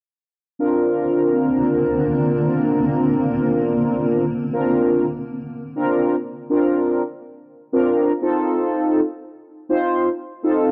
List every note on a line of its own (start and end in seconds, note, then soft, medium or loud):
0.59 4.49 D3 medium
0.59 4.25 A#3 medium
0.59 4.24 C4 medium
0.59 4.49 C4 medium
0.59 4.24 D4 medium
0.59 4.24 F4 medium
0.59 4.25 A#4 medium
4.53 5.06 C4 medium
4.53 5.06 D4 medium
4.53 5.06 F4 medium
4.53 5.06 A#4 medium
5.76 6.15 C4 medium
5.76 6.16 D4 medium
5.76 6.16 F4 medium
5.76 6.16 A#4 loud
6.49 7.02 C4 medium
6.49 7.03 D4 medium
6.49 7.03 F4 medium
6.49 7.03 A#4 medium
7.72 8.12 C4 medium
7.72 8.12 D4 medium
7.72 8.12 F4 medium
7.72 8.12 A#4 loud
8.22 9.00 C4 medium
8.22 9.00 D#4 medium
8.22 9.01 F4 medium
8.22 9.01 A4 loud
9.69 10.09 C4 medium
9.69 10.09 D#4 medium
9.69 10.09 F4 medium
9.69 10.09 C5 medium
10.43 10.72 C4 medium
10.43 10.72 D#4 medium
10.43 10.72 F4 medium
10.43 10.72 A4 medium